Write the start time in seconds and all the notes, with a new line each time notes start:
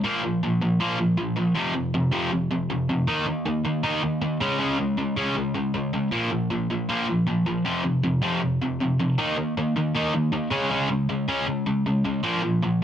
0.04 A#2 F3 A#3
0.24 A#2 F3
0.43 A#2 F3
0.61 A#2 F3
0.80 A#2 F3 A#3
0.99 A#2 F3
1.17 A#2 F3
1.36 A#2 F3
1.55 F2 C3 F3
1.75 F2 C3
1.94 F2 C3
2.12 F2 C3 F3
2.32 F2 C3
2.51 F2 C3
2.70 F2 C3
2.89 F2 C3
3.07 D#3 A#3 D#4
3.27 D#3 A#3
3.46 D#3 A#3
3.65 D#3 A#3
3.83 D#3 A#3 D#4
4.03 D#3 A#3
4.22 D#3 A#3
4.41 C#3 G#3 C#4
4.59 C#3 G#3 C#4
4.79 C#3 G#3
4.98 C#3 G#3
5.16 C#3 G#3 C#4
5.36 C#3 G#3
5.54 C#3 G#3
5.74 C#3 G#3
5.93 C#3 G#3
6.11 A#2 F3 A#3
6.31 A#2 F3
6.51 A#2 F3
6.70 A#2 F3
6.89 A#2 F3 A#3
7.09 A#2 F3
7.27 A#2 F3
7.46 A#2 F3
7.65 F2 C3 F3
7.84 F2 C3
8.03 F2 C3
8.22 F2 C3 F3
8.42 F2 C3
8.61 F2 C3
8.80 F2 C3
8.99 F2 C3
9.18 D#3 A#3 D#4
9.37 D#3 A#3
9.57 D#3 A#3
9.76 D#3 A#3
9.95 D#3 A#3 D#4
10.14 D#3 A#3
10.32 D#3 A#3
10.50 C#3 G#3 C#4
10.70 C#3 G#3 C#4
10.89 C#3 G#3
11.09 C#3 G#3
11.28 C#3 G#3 C#4
11.47 C#3 G#3
11.66 C#3 G#3
11.86 C#3 G#3
12.05 C#3 G#3
12.24 A#2 F3 A#3
12.43 A#2 F3
12.63 A#2 F3